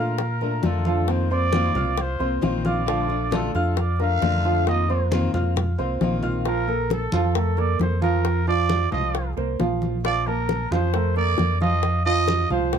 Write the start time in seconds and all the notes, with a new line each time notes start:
Already playing: A#2 D4 F4 A#4 F5 F6
0.00 A3
0.18 muted steel-string acoustic guitar stroke, high bongo, high conga
0.41 A3 D4 F4 A#4 A#5, high bongo, high conga
0.63 F2 D3 A3 D4 F4 A4, high bongo, low bongo, high conga
0.85 F3 F4 F5, high bongo, high conga
1.07 D#3 A#3 C4 F4 C5, high bongo, high conga
1.30 A#3 C4 F4 C5 D5 C6, high conga
1.52 D#3 A#3 C4 F4, high bongo, high conga
1.74 C2 A#3 C4 F4 F5 F6, high bongo, high conga, low conga
1.97 C5, muted steel-string acoustic guitar stroke, high bongo, high conga
2.19 C2 A#3 C4 F4 C5 C6, high bongo, high conga
2.41 A#1 D#3 A#3 C4 F4, high bongo, low bongo, high conga
2.45 C5
2.65 F4 D5 F5 F6, high bongo, high conga
2.86 D3 F3 A3 D4 F4 F5, high bongo, high conga
3.08 A3 D4 F4, high conga
3.31 D3 A3 D4 F4 A4 A5, high bongo, high conga
3.36 A4
3.54 F2 A3 D4 F4 F5 F6, high bongo, high conga
3.77 D5, muted steel-string acoustic guitar stroke, high bongo, high conga
3.99 A3 D4 F4 A#4 F5 A#5, high bongo, high conga
4.22 F2 D3 A3 D4 F4, high bongo, low bongo, high conga
4.44 F3 F4 F5, high bongo
4.67 D#3 A#3 C4 F4 D#5, high bongo, high conga
4.88 A#3 C4 F4 C5 C6, high conga
5.11 D#3 A#3 C4 F4, high bongo, high conga
5.33 F2 A#3 C4 F4 F5 F6, high bongo, high conga, low conga
5.56 muted steel-string acoustic guitar stroke, high bongo, high conga, low conga
5.78 C2 A#3 C4 F4 C5 C6, high bongo, high conga
6.01 A#1 D#3 A#3 C4 F4, high bongo, low bongo, high conga
6.23 F4 F5 F6, high bongo, low conga
6.45 F3 F4 A#4 F5, high bongo, high conga
6.68 A#3 A4 A#4, high conga
6.90 A4, high bongo, high conga
7.12 F2 F3 F4 F5, high conga
7.35 A3 A4 A#4, high bongo, high conga
7.57 A#3 A4 A#4 D5, high bongo, high conga
7.79 F2 C5, high bongo, low bongo, high conga
8.01 F3 F4 A#4 F5, high bongo, high conga
8.25 high bongo, high conga
8.47 F3 F4 D5 F5, high conga
8.69 high bongo, high conga
8.91 C2 F3 F4 D#5 F5, high conga, low conga
9.14 high bongo, high conga
9.37 C2 A#3 A#4 C5, high bongo, high conga
9.60 A#1 F3 F4 F5, high bongo, low bongo, high conga
9.82 high bongo, high conga
10.05 F3 F4 D5 F5, high bongo, high conga
10.27 A#3 A#4 A5, high conga
10.49 high bongo, high conga
10.71 F2 F3 F4 C5 F5, high conga
10.94 A3 A4 A#4, high bongo, high conga
11.16 A#3 A4 A#4 D5, high bongo, high conga
11.38 F2, high bongo, low bongo, high conga
11.61 F3 F4 D#5 F5, high bongo, high conga
11.83 high bongo, high conga
12.05 F3 F4 D#5 F5, high conga
12.28 high bongo, high conga
12.50 C2 F3 F4 C5 F5, high conga, low conga
12.73 high bongo, high conga, low conga